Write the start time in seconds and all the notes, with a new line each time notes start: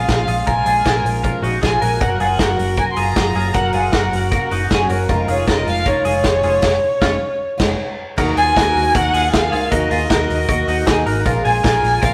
Already playing: F4 G#4
0.07 A#1 A#2 F3 G#3 C#4 G#4 F5, kick, snare, closed hi-hat
0.27 A#1 G#3 C#4 F4 G#4, open hi-hat
0.46 A#1 A#2 F3 G#3 C#4 F4 G#4 A#4 G#5, kick, closed hi-hat
0.65 A#1 G#3 C#4 F4 G#4, open hi-hat
0.85 A#1 A#2 C#4 F4 G#4 A#4, kick, snare, closed hi-hat
1.04 A#1 G#3 C#4 G#4, open hi-hat
1.22 F3 G#3 C#4 F4 G#4 A#4, kick, closed hi-hat
1.42 A#1 G#3 C#4 D#4 F#4 G#4, open hi-hat
1.62 A#1 A#2 F3 G#3 C#4 F4 G#4 G#5, kick, snare, closed hi-hat
1.81 A#1 G#3 C#4 F#4 G#4 A#4, open hi-hat
2.00 F#1 F#2 C#3 F#3 A#3 C#4 F#4 A#4 F#5, kick, closed hi-hat
2.18 F#1 F#3 A#3 C#4 F4 F#4 G#4 F#5, open hi-hat
2.37 F#1 F#2 C#3 F#3 A#3 C#4 F#4 A#4, kick, snare, closed hi-hat
2.57 F#1 F#3 A#3 C#4 F#4, open hi-hat
2.76 F#3 A#3 F#4 A#4 G#5, kick, closed hi-hat
2.91 C6
2.96 F#1 F#3 A#3 C#4 F4 F#4 G#4 A#5, open hi-hat
3.16 F#1 F#2 C#3 F#3 A#3 C#4 F#4, kick, snare, closed hi-hat
3.35 F#1 F#3 A#3 C#4 F4 F#4 G#4, open hi-hat
3.53 F#1 F#2 C#3 F#3 A#3 C#4 F#4 A#4 F#5, kick, closed hi-hat
3.73 F#1 F#3 A#3 C#4 F4 F#4 G#4 F#5, open hi-hat
3.92 F#1 F#2 C#3 F#3 A#3 C#4 F#4 A#4, kick, snare, closed hi-hat
4.11 F#1 F#3 A#3 C#4 F#4, open hi-hat
4.31 F#3 A#3 C#4 F#4 A#4, kick, closed hi-hat
4.49 F#1 F#3 A#3 C#4 D#4 F#4, open hi-hat
4.69 F#1 F#2 C#3 F#3 A#3 C#4 F#4 G#4, kick, snare, closed hi-hat
4.89 F#1 F#3 A#3 C#4 F#4 A#4, open hi-hat
5.08 F1 F2 D#3 G#3 C#4 D#4 F4 A#4, kick, closed hi-hat
5.27 F1 G#3 C#4 D#4 F4 G#4 C#5, open hi-hat
5.46 F1 F2 D#3 G#3 C#4 D#4 F4 A#4 D#5, kick, snare, closed hi-hat
5.64 F1 G#3 C#4 D#4 F4, open hi-hat
5.69 F5
5.84 G#3 C#4 D#4 F4 A#4 C#5, kick, closed hi-hat
6.04 F1 G#3 C#4 D#4 F4 G#4, open hi-hat
6.24 F1 F2 D#3 G#3 C#4 D#4 F4, kick, snare, closed hi-hat
6.42 F1 G#3 C#4 D#4 F4 G#4, open hi-hat
6.61 F1 F2 D#3 G#3 C#4 D#4 F4, kick, snare, crash
7.01 F1 F2 D#3 G#3 C#4 D#4 F4, kick, snare
7.58 F1 G#3 C#4 D#4 F4, kick, snare, crash
8.16 D#2 D#3 A#3 D#4 F#4 A#4, kick, crash
8.36 D#2 A#3 D#4 F4 F#4 G#4 G#5, open hi-hat
8.55 D#2 D#3 A#3 D#4 F#4 A#4, kick, snare, closed hi-hat
8.74 D#2 A#3 D#4 F#4, open hi-hat
8.93 D#2 D#3 A#3 D#4 F#4 A#4 F#5, kick, closed hi-hat
9.13 D#2 A#3 D#4 F4 F#4 G#4, open hi-hat
9.32 D#2 D#3 A#3 D#4 F#4 A#4 F5, kick, snare, closed hi-hat
9.52 C#2 A#3 D#4 F4 F#4 G#4, open hi-hat
9.71 D#2 D#3 A#3 D#4 F#4 A#4 D#5, kick, closed hi-hat
9.90 D#2 A#3 D#4 F4 F#4 G#4, open hi-hat
10.09 D#2 D#3 A#3 D#4 F#4 A#4, kick, snare, closed hi-hat
10.29 D#2 A#3 D#4 F#4, open hi-hat
10.47 D#2 D#3 A#3 D#4 F#4 A#4, kick, closed hi-hat
10.66 D#2 A#3 D#4 F#4, open hi-hat
10.85 D#2 D#3 A#3 D#4 F#4 G#4, kick, snare, closed hi-hat
11.06 G#1 A#3 D#4 F#4 A#4, open hi-hat
11.25 A#1 A#2 F3 G#3 C#4 F4 G#4 A#4, kick, closed hi-hat
11.43 A#1 G#3 C#4 F4 G#4 G#5, open hi-hat
11.63 A#1 A#2 F3 G#3 C#4 F4 G#4 A#4, kick, snare, closed hi-hat
11.82 A#1 G#3 C#4 G#4, open hi-hat
12.02 A#1 F3 G#3 C#4 F4 A#4 F5, kick, closed hi-hat